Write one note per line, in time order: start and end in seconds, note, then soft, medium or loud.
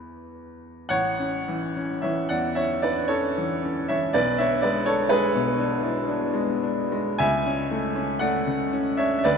0.00 0.84 E2 medium
0.00 0.84 E3 soft
0.00 0.85 E4 soft
0.00 0.85 G#4 soft
0.00 0.29 B4 medium
0.89 4.11 A1 medium
0.89 2.00 C#5 medium
0.89 2.03 F#5 loud
1.20 1.66 C#4 soft
1.48 1.93 E3 soft
1.76 2.20 C#4 soft
2.02 2.46 E3 medium
2.02 2.28 C#5 medium
2.02 2.30 E5 medium
2.29 2.73 E2 soft
2.29 2.55 D5 medium
2.29 2.56 F#5 medium
2.55 3.00 C#4 soft
2.55 2.81 C#5 medium
2.55 2.83 E5 medium
2.82 3.10 D4 soft
2.82 3.08 B4 medium
2.82 3.10 D5 medium
3.08 3.53 C#4 medium
3.08 3.85 A4 medium
3.08 3.88 C#5 medium
3.37 3.79 E3 soft
3.63 4.05 C#4 medium
3.88 4.15 E3 soft
3.88 4.13 C#5 medium
3.88 4.15 E5 medium
4.13 7.17 B1 medium
4.13 4.38 B4 medium
4.13 4.39 D5 loud
4.38 4.79 D4 medium
4.38 4.63 C#5 medium
4.38 4.64 E5 loud
4.61 5.03 G#3 soft
4.61 4.86 B4 medium
4.61 4.87 D5 medium
4.86 5.26 D4 medium
4.86 5.10 A4 medium
4.86 5.11 C#5 medium
5.09 5.50 G#3 medium
5.09 7.16 G#4 medium
5.09 7.19 B4 loud
5.35 5.74 B2 medium
5.59 5.98 D4 medium
5.83 6.08 E4 soft
6.08 6.51 D4 medium
6.33 6.81 G#3 medium
6.63 7.10 D4 medium
6.92 7.20 G#3 medium
7.18 9.20 C#2 medium
7.18 8.17 E5 loud
7.18 8.21 G#5 loud
7.46 7.87 C#4 medium
7.71 8.11 A3 medium
7.96 8.36 C#4 medium
8.19 8.62 A3 medium
8.19 8.94 D5 medium
8.19 8.97 F#5 medium
8.47 8.88 C#3 medium
8.73 9.14 C#4 medium
8.97 9.25 D4 soft
8.97 9.16 C#5 medium
8.97 9.17 E5 loud
9.19 9.25 E5 medium
9.24 9.38 D2 medium
9.24 9.38 B4 medium
9.24 9.38 D5 loud